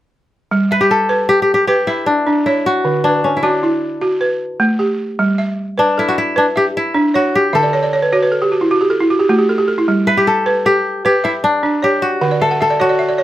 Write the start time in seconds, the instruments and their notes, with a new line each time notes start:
0.51 balafon G3
0.71 kora B4, balafon E5
0.81 kora G4
0.91 kora A4
1.09 balafon B4
1.29 kora G4
1.42 kora G4
1.54 kora G4
1.67 kora G4, balafon B4
1.87 kora E4, balafon E5
2.06 kora D4
2.27 balafon D4
2.46 kora E4, balafon C#5
2.66 kora F#4
2.85 balafon D3
3.04 kora D4, balafon B4
3.24 kora C#4
3.37 kora E4
3.43 kora D4, balafon F#4
3.63 balafon E4
4.01 balafon F#4
4.21 balafon B4
4.60 balafon A3
4.79 balafon G4
5.19 balafon G3
5.38 balafon E5
5.78 kora D4, balafon B4
5.98 kora E4, balafon A4
6.09 kora F#4
6.18 kora E4
6.36 kora D4, balafon B4
6.56 kora G4, balafon E5
6.77 kora E4
6.94 balafon D4
7.14 kora F#4, balafon C#5
7.35 kora G4
7.53 balafon D3 E5, kora A4
7.63 balafon D5
7.73 balafon C#5
7.83 balafon D5
7.93 balafon C#5
8.02 balafon B4
8.12 balafon F#4 C#5
8.22 balafon B4
8.32 balafon A4
8.42 balafon G4
8.52 balafon F#4
8.61 balafon E4
8.71 balafon F#4
8.81 balafon G4
8.90 balafon A4
9.00 balafon E4
9.10 balafon F#4
9.20 balafon G4
9.29 balafon A3 F#4
9.39 balafon G4
9.49 balafon A4
9.58 balafon G4
9.68 balafon A4
9.78 balafon E4
9.88 balafon G3
10.07 kora B4, balafon E5
10.17 kora G4
10.27 kora A4
10.46 balafon B4
10.66 kora G4, balafon A4
11.05 kora G4, balafon B4
11.24 kora E4, balafon E5
11.44 kora D4
11.63 balafon D4
11.82 kora G4, balafon C#5
12.02 kora F#4
12.21 balafon D3 F#5
12.31 balafon D5
12.41 kora A4, balafon E5
12.51 balafon F#5
12.61 kora A4, balafon E5
12.70 balafon D5
12.80 balafon F#4 C#5, kora F#4
12.89 balafon D5
12.99 balafon E5
13.09 balafon D5
13.18 balafon C#5